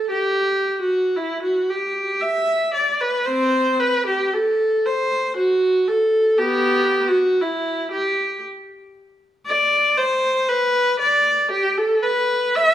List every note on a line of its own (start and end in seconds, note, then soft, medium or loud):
0.10 0.80 G4 medium
0.81 1.16 F#4 medium
1.16 1.43 E4 medium
1.43 1.69 F#4 medium
1.70 2.22 G4 medium
2.21 2.74 E5 medium
2.74 3.00 D5 medium
3.01 3.27 B4 medium
3.27 3.76 C4 medium
3.27 3.80 C5 medium
3.80 4.06 B4 medium
4.06 4.32 G4 medium
4.33 4.86 A4 medium
4.86 5.37 C5 medium
5.37 5.87 F#4 medium
5.88 6.39 A4 medium
6.38 7.04 B3 medium
6.38 7.07 G4 medium
7.08 7.42 F#4 medium
7.42 7.92 E4 medium
7.92 8.42 G4 medium
9.46 9.94 D5 medium
9.97 10.49 C5 medium
10.49 11.00 B4 medium
11.00 11.51 D5 medium
11.51 11.77 G4 medium
11.77 12.04 A4 medium
12.03 12.56 B4 medium
12.55 12.74 E5 medium